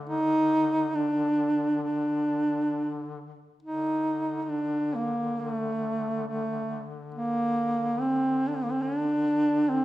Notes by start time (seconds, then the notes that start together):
Already playing: D3
0.09 D#4
0.95 D4
1.83 D4
3.63 D3 D#4
4.43 D#4
4.49 D4
4.95 A#3
5.40 A3
6.27 A3
7.14 A#3
8.00 C4
8.48 D4
8.55 C4
8.64 A#3
8.72 C4
8.82 D4
9.69 C4